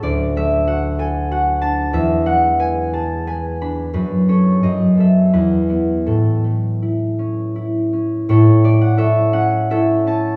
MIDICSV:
0, 0, Header, 1, 2, 480
1, 0, Start_track
1, 0, Key_signature, 3, "major"
1, 0, Tempo, 632911
1, 39, Time_signature, 3, 2, 24, 8
1, 1474, Tempo, 671141
1, 3394, Tempo, 701754
1, 3874, Tempo, 738916
1, 5794, Tempo, 710900
1, 7197, End_track
2, 0, Start_track
2, 0, Title_t, "Harp"
2, 0, Program_c, 0, 46
2, 0, Note_on_c, 0, 57, 48
2, 0, Note_on_c, 0, 66, 54
2, 0, Note_on_c, 0, 69, 75
2, 0, Note_on_c, 0, 78, 73
2, 20, Note_on_c, 0, 38, 65
2, 25, Note_on_c, 0, 74, 87
2, 268, Note_off_c, 0, 57, 0
2, 275, Note_on_c, 0, 57, 50
2, 280, Note_on_c, 0, 76, 87
2, 499, Note_off_c, 0, 66, 0
2, 503, Note_off_c, 0, 78, 0
2, 508, Note_on_c, 0, 66, 51
2, 512, Note_on_c, 0, 78, 80
2, 681, Note_off_c, 0, 76, 0
2, 742, Note_off_c, 0, 69, 0
2, 749, Note_on_c, 0, 69, 47
2, 753, Note_on_c, 0, 80, 80
2, 987, Note_off_c, 0, 66, 0
2, 987, Note_off_c, 0, 78, 0
2, 994, Note_on_c, 0, 66, 46
2, 998, Note_on_c, 0, 78, 81
2, 1158, Note_off_c, 0, 80, 0
2, 1225, Note_on_c, 0, 81, 90
2, 1228, Note_on_c, 0, 62, 45
2, 1465, Note_on_c, 0, 40, 60
2, 1470, Note_on_c, 0, 76, 88
2, 1485, Note_off_c, 0, 38, 0
2, 1486, Note_off_c, 0, 57, 0
2, 1489, Note_off_c, 0, 69, 0
2, 1489, Note_off_c, 0, 81, 0
2, 1493, Note_off_c, 0, 66, 0
2, 1493, Note_off_c, 0, 78, 0
2, 1697, Note_on_c, 0, 56, 47
2, 1702, Note_on_c, 0, 78, 84
2, 1939, Note_on_c, 0, 71, 45
2, 1941, Note_on_c, 0, 80, 84
2, 2111, Note_off_c, 0, 78, 0
2, 2182, Note_on_c, 0, 68, 45
2, 2183, Note_on_c, 0, 81, 71
2, 2416, Note_off_c, 0, 80, 0
2, 2419, Note_off_c, 0, 71, 0
2, 2425, Note_on_c, 0, 80, 76
2, 2428, Note_on_c, 0, 71, 46
2, 2595, Note_off_c, 0, 81, 0
2, 2662, Note_off_c, 0, 62, 0
2, 2669, Note_on_c, 0, 62, 41
2, 2670, Note_on_c, 0, 83, 74
2, 2893, Note_off_c, 0, 71, 0
2, 2897, Note_off_c, 0, 74, 0
2, 2898, Note_on_c, 0, 42, 56
2, 2903, Note_on_c, 0, 71, 73
2, 2924, Note_off_c, 0, 56, 0
2, 2925, Note_off_c, 0, 40, 0
2, 2925, Note_off_c, 0, 76, 0
2, 2926, Note_off_c, 0, 68, 0
2, 2926, Note_off_c, 0, 80, 0
2, 2928, Note_off_c, 0, 83, 0
2, 2929, Note_off_c, 0, 62, 0
2, 3148, Note_on_c, 0, 61, 42
2, 3152, Note_on_c, 0, 73, 58
2, 3155, Note_on_c, 0, 69, 46
2, 3317, Note_off_c, 0, 71, 0
2, 3390, Note_off_c, 0, 42, 0
2, 3395, Note_on_c, 0, 75, 71
2, 3398, Note_on_c, 0, 42, 55
2, 3413, Note_off_c, 0, 61, 0
2, 3413, Note_off_c, 0, 73, 0
2, 3611, Note_on_c, 0, 59, 36
2, 3622, Note_off_c, 0, 69, 0
2, 3630, Note_on_c, 0, 69, 40
2, 3650, Note_on_c, 0, 76, 60
2, 3877, Note_on_c, 0, 71, 63
2, 3878, Note_on_c, 0, 40, 51
2, 3893, Note_off_c, 0, 69, 0
2, 3894, Note_off_c, 0, 75, 0
2, 3895, Note_off_c, 0, 42, 0
2, 4100, Note_off_c, 0, 59, 0
2, 4108, Note_on_c, 0, 59, 37
2, 4113, Note_on_c, 0, 64, 35
2, 4351, Note_on_c, 0, 69, 58
2, 4354, Note_on_c, 0, 45, 47
2, 4368, Note_off_c, 0, 59, 0
2, 4371, Note_off_c, 0, 71, 0
2, 4372, Note_off_c, 0, 40, 0
2, 4596, Note_on_c, 0, 57, 36
2, 4837, Note_off_c, 0, 64, 0
2, 4845, Note_on_c, 0, 64, 38
2, 5082, Note_on_c, 0, 61, 35
2, 5313, Note_off_c, 0, 64, 0
2, 5321, Note_on_c, 0, 64, 38
2, 5555, Note_off_c, 0, 61, 0
2, 5562, Note_on_c, 0, 61, 37
2, 5791, Note_off_c, 0, 45, 0
2, 5797, Note_on_c, 0, 45, 68
2, 5799, Note_off_c, 0, 64, 0
2, 5800, Note_off_c, 0, 69, 0
2, 5800, Note_on_c, 0, 73, 76
2, 5806, Note_on_c, 0, 64, 69
2, 5809, Note_on_c, 0, 69, 65
2, 6026, Note_off_c, 0, 57, 0
2, 6032, Note_on_c, 0, 57, 50
2, 6038, Note_on_c, 0, 74, 80
2, 6151, Note_on_c, 0, 78, 78
2, 6210, Note_off_c, 0, 76, 0
2, 6231, Note_off_c, 0, 74, 0
2, 6250, Note_off_c, 0, 64, 0
2, 6256, Note_off_c, 0, 69, 0
2, 6256, Note_on_c, 0, 64, 52
2, 6260, Note_off_c, 0, 73, 0
2, 6264, Note_on_c, 0, 69, 60
2, 6264, Note_on_c, 0, 76, 85
2, 6268, Note_on_c, 0, 73, 56
2, 6347, Note_off_c, 0, 78, 0
2, 6493, Note_off_c, 0, 61, 0
2, 6499, Note_on_c, 0, 61, 44
2, 6500, Note_on_c, 0, 78, 81
2, 6744, Note_off_c, 0, 64, 0
2, 6745, Note_off_c, 0, 76, 0
2, 6749, Note_off_c, 0, 73, 0
2, 6750, Note_off_c, 0, 69, 0
2, 6750, Note_on_c, 0, 64, 47
2, 6755, Note_on_c, 0, 76, 80
2, 6757, Note_on_c, 0, 69, 62
2, 6759, Note_on_c, 0, 73, 56
2, 6928, Note_off_c, 0, 78, 0
2, 6990, Note_off_c, 0, 61, 0
2, 6996, Note_on_c, 0, 61, 47
2, 7001, Note_on_c, 0, 81, 79
2, 7197, Note_off_c, 0, 45, 0
2, 7197, Note_off_c, 0, 57, 0
2, 7197, Note_off_c, 0, 61, 0
2, 7197, Note_off_c, 0, 64, 0
2, 7197, Note_off_c, 0, 69, 0
2, 7197, Note_off_c, 0, 73, 0
2, 7197, Note_off_c, 0, 76, 0
2, 7197, Note_off_c, 0, 81, 0
2, 7197, End_track
0, 0, End_of_file